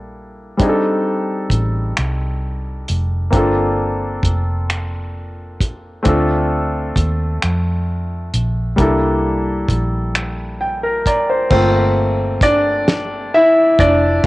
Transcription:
Already playing: A#1 G3 A#3 D4 E4 A4
0.57 F1 G3 C4 D4 D#4, kick, closed hi-hat
0.63 G#4
0.69 A4
1.50 A1, kick, closed hi-hat
1.97 C2, finger snap, closed hi-hat
2.88 F1, closed hi-hat
3.30 G1 A#3 C4 D4, kick, closed hi-hat
3.35 F4 A4
4.23 F1, kick, closed hi-hat
4.70 finger snap, closed hi-hat
5.60 kick, closed hi-hat
6.03 D2 A3 C4 D4 F4, kick, closed hi-hat
6.09 A4
6.96 D#2, kick, closed hi-hat
7.42 F2, finger snap, closed hi-hat
8.34 A#1, closed hi-hat
8.76 C2 G3 A#3 D4 E4, kick, closed hi-hat
8.82 A4
9.69 A#1, kick, closed hi-hat
10.15 finger snap, closed hi-hat
10.61 G5
10.83 A#4
11.06 D5 A#5, kick, closed hi-hat
11.30 C5
11.50 G1 A3 A#3 C4 F4 C5, kick, crash
12.41 D4 D5, kick, closed hi-hat
12.88 snare, closed hi-hat
13.34 E4 E5
13.79 F1 D4 D5, kick, closed hi-hat

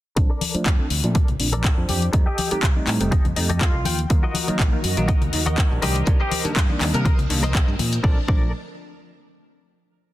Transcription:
0.16 A#1 F3 A3 C4 D4, muted clean electric guitar stroke, kick, closed hi-hat
0.30 A4 A#4 D5
0.41 open hi-hat, high conga
0.54 F3 A3 C4 D4, muted fingered electric bass stroke, closed hi-hat, maracas
0.66 F2, kick, clap, closed hi-hat
0.79 F3 A3 C4 D4, muted clean electric guitar stroke, high conga, maracas
0.90 D2, open hi-hat
1.04 A#2 F3 A3 C4 D4, closed hi-hat, maracas
1.15 A4 A#4 D5, kick, closed hi-hat, high conga, maracas
1.28 A#1, closed hi-hat, low conga, maracas
1.39 A#1 F3 A3 C4 D4, muted clean electric guitar stroke, open hi-hat
1.52 A4 A#4 D5, closed hi-hat, high conga, maracas
1.64 kick, clap, closed hi-hat
1.77 F2 F3 C4 D4
1.89 F2 G4, open hi-hat, high conga
2.02 closed hi-hat, maracas
2.13 F2 G3 A3 C4 D#4, muted clean electric guitar stroke, kick, closed hi-hat
2.26 G4 A4 D#5
2.38 open hi-hat, high conga
2.51 G3 A3 C4 D#4 G4, muted fingered electric bass stroke, closed hi-hat, maracas
2.63 C2, kick, clap, closed hi-hat
2.75 G3 A3 C4 D#4, muted clean electric guitar stroke, high conga, maracas
2.87 A2, clap, open hi-hat
3.00 F1 G3 A3 C4 D#4, closed hi-hat, maracas
3.11 G4 A4 D#5, kick, closed hi-hat, high conga, maracas
3.25 F2, closed hi-hat, low conga, maracas
3.36 F2 G3 A3 C4 D#4 D#5, muted clean electric guitar stroke, open hi-hat
3.49 G4 A4 D#5, closed hi-hat, high conga, maracas
3.61 F4 F5, kick, clap, closed hi-hat
3.74 C2, maracas
3.85 D#2 G5, open hi-hat, high conga
3.99 closed hi-hat, maracas
4.10 D#2 D#3 F#3 A#3 D#4 F#4 A#4, muted clean electric guitar stroke, kick, closed hi-hat
4.23 F#4 A#4 D#5, maracas
4.34 open hi-hat, high conga
4.47 D#3 F#3 A#3 D#4, muted fingered electric bass stroke, closed hi-hat, maracas
4.59 A#1, kick, clap, closed hi-hat
4.72 D#3 F#3 A#3 D#4, muted clean electric guitar stroke, high conga, maracas
4.84 F#2, open hi-hat
4.97 A#1 D#3 F#3 A#3 D#4, closed hi-hat, maracas
5.08 F#4 A#4 D#5, kick, closed hi-hat, high conga, maracas
5.21 D#2, closed hi-hat, low conga, maracas
5.33 D#2 D#3 F#3 A#3 D#4, muted clean electric guitar stroke, open hi-hat
5.46 F#4 A#4 D#5, closed hi-hat, high conga, maracas
5.58 kick, clap, closed hi-hat, maracas
5.70 A#1 D#3 G3 A#3 D4, maracas
5.82 C2 C4 G4 A#4 C5 D#5, open hi-hat, high conga
5.94 closed hi-hat, maracas
6.06 C2 D#3 G3 A#3 D4, kick, closed hi-hat, maracas
6.20 G4 A#4 C5 D#5, maracas
6.31 open hi-hat, high conga
6.44 D#3 G3 A#3 D4, muted fingered electric bass stroke, closed hi-hat, maracas
6.56 G2, kick, clap, closed hi-hat, maracas
6.69 D#3 G3 A#3 D4, muted clean electric guitar stroke, high conga, maracas
6.81 D#2, clap, open hi-hat
6.94 C3 D#3 G3 A#3 D4 A#4, closed hi-hat, maracas
7.05 A#4 C5 D#5, kick, closed hi-hat, high conga, maracas
7.18 C2, closed hi-hat, low conga, maracas
7.30 C2 D#3 G3 A#3 D4, muted clean electric guitar stroke, open hi-hat
7.42 A#4 C5 D#5, closed hi-hat, high conga, maracas
7.55 kick, clap, closed hi-hat, maracas
7.68 G2, maracas
7.79 A#2, open hi-hat, high conga
7.92 closed hi-hat, maracas
8.03 A#1 F3 A3 C4 D4 A4 A#4 D5 A5, kick
8.27 A#1 F3 A3 C4 D4 A4 A#4 D5, kick

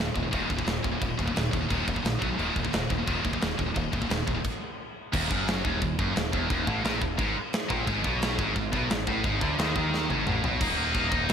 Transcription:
Already playing: D#2 A#2
0.14 D#1 D#2 A#2, kick, crash
0.23 D#2 A#2
0.31 D#1 D#2 A#2 D#3, kick, crash
0.48 D#1 D#2 A#2, kick, crash
0.57 D#2 A#2, kick
0.65 D#1 D#2 A#2, snare, crash
0.83 D#1 D#2 A#2, kick, crash
0.92 D#2 A#2
1.00 D#1 D#2 A#2, kick, crash
1.18 D#1 D#2 A#2, kick, crash
1.26 D#2 A#2, kick
1.35 D#1 D#2 A#2, snare, crash
1.51 D#1 D#2 A#2, kick, crash
1.61 D#2 A#2
1.69 D#1 D#2 A#2 D#3, kick, crash
1.86 D#1 D#2 A#2, kick, crash
1.94 D#2 A#2, kick
2.03 A#1 D#2 A#2, snare, crash
2.20 B1 B2 F#3 B3, kick, crash
2.29 B2 F#3
2.38 D#1 D#2 A#2 D#3, crash
2.54 D#1 D#2 A#2, kick, crash
2.63 D#2 A#2, kick
2.71 D#1 D#2 A#2, snare, crash
2.89 D#1 D#2 A#2, kick, crash
2.98 D#2 A#2
3.06 D#1 D#2 A#2 D#3, kick, crash
3.23 D#1 D#2 A#2, kick, crash
3.32 D#2 A#2, kick
3.41 D#1 D#2 A#2, snare, crash
3.57 D#1 D#2 A#2, kick, crash
3.66 D#2 A#2
3.74 D#1 D#2 A#2, kick, crash
3.92 D#1 D#2 A#2, kick, crash
4.01 D#2 A#2, kick
4.09 D#1 D#2 A#2, snare, crash
4.27 D#1 D#2 A#2, kick, crash
4.35 D#2 A#2
4.44 kick, crash
5.13 D#1 D#2, kick, crash
5.31 F#1 F#2, kick
5.48 snare, crash
5.64 D#1 D#2, kick
5.82 D#1 D#2, kick, crash
5.99 F#1 F#2, kick
6.16 D#1 D#2, snare, crash
6.33 E1 E2, kick
6.50 D#1 D#2, kick, crash
6.67 A1 A2, kick
6.84 A#1 A#2, snare, crash
7.01 D#1 D#2, kick
7.18 G#1 G#2, kick, crash
7.53 snare, crash
7.69 A#1 A#2, kick
7.86 G#1 G#2, kick, crash
8.03 B1 B2, kick
8.22 snare, crash
8.38 G#1 G#2, kick
8.55 G#1 G#2, kick, crash
8.72 B1 B2, kick
8.90 G#1 G#2, snare, crash
9.07 A1 A2, kick
9.24 G#1 G#2, kick, crash
9.41 D2 D3, kick
9.59 D#2 D#3, snare, crash
9.76 D#2 D#3, kick
9.94 snare
10.10 G#1 G#2, high tom
10.26 A1 A2, mid tom
10.44 B1 B2, floor tom
10.61 D#1 A#3 D#4, kick, crash, china
10.68 A#3 D#4
10.77 D#1 A#3 D#4
10.85 A#3 D#4
10.92 D#1 A#3 D#4, kick, china
11.01 A#3 D#4
11.08 D#1 A#3 D#4, kick
11.16 A#3 D#4
11.24 A#3 D#4
11.29 D#1, snare, china

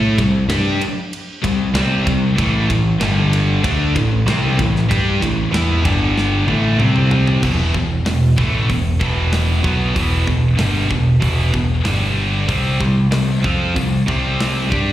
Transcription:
Already playing: A2 A3 E4 A4
0.18 C2 C3 G3, kick, ride
0.49 G2 G3 D4 G4, snare, ride
0.81 ride
1.13 ride
1.42 C2 C3 G3, kick, ride
1.74 C2 C3 G3 C4, snare, ride
2.07 C2 C3 G3, kick, ride
2.38 A1 A2 E3 A3, kick, ride
2.70 A1 A2 E3, kick, ride
3.00 G1 G2 D3 G3, snare, ride
3.33 ride
3.63 D2 D3 A3 D4, kick, ride
3.95 A1 A2 E3, kick, ride
4.26 C2 C3 G3 C4, snare, ride
4.58 A1 A2 E3, kick, ride
4.76 snare
4.89 G2 G3 D4 G4, kick, ride
5.22 A1 A2 E3, kick, ride
5.52 E2 E3 B3 E4, snare, ride
5.84 G1 G2 D3 G3, kick, ride
6.17 snare
6.47 A1 A2 E3 A3, high tom
6.79 C2 C3 G3 C4, mid tom
6.96 mid tom
7.11 floor tom
7.27 floor tom
7.42 E1 E2 B2 E3, kick, crash
7.74 E1 E2 B2, kick
8.05 E1 E2 B2, snare, open hi-hat
8.37 A1 A2 E3 A3, kick
8.68 E1 E2 B2, kick, open hi-hat
9.00 E1 E2 B2 E3, kick
9.33 snare, open hi-hat
9.62 B1 B2 F#3 B3, kick
9.94 E1 E2 B2 E3, kick, open hi-hat
10.27 E1 E2 B2, kick
10.57 G1 G2 D3 G3, snare, open hi-hat
10.90 E1 E2 B2, kick
11.21 E1 E2 B2 E3, kick, open hi-hat
11.53 E2 B2, kick
11.83 G1 G2 D3 G3, snare, open hi-hat
12.48 C2 C3 G3 C4, kick, open hi-hat
12.79 C2 C3 G3, kick
13.12 C2 C3 G3, snare, open hi-hat
13.43 F2 F3 C4 F4, kick
13.76 C2 C3 G3, kick, open hi-hat
14.07 C2 C3 G3 C4, kick
14.40 snare, open hi-hat
14.71 G2 G3 D4 G4, kick

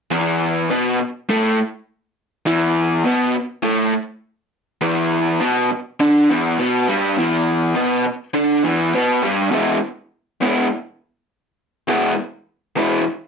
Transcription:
0.11 E2 E3
0.70 B2 B3
0.99 muted overdriven electric guitar stroke
1.29 A2 A3
2.46 E2 E3
3.04 B2 B3
3.36 muted overdriven electric guitar stroke
3.63 A2 A3
4.81 E2 E3
5.40 B2 B3
5.71 muted overdriven electric guitar stroke
6.00 D3 D4
6.29 E2 E3
6.58 B2 B3
6.88 G2 G3
7.18 E2 E3
7.75 B2 B3
8.06 muted overdriven electric guitar stroke
8.34 D3 D4
8.63 E2 E3
8.93 B2 B3
9.22 G2 G3
9.51 E2 B2 E3 G#3 B3 E4
10.41 E2 B2 E3 G#3 B3 E4
11.88 E2 B2 E3 G#3 B3 E4
12.76 E2 B2 E3 G#3 B3 E4

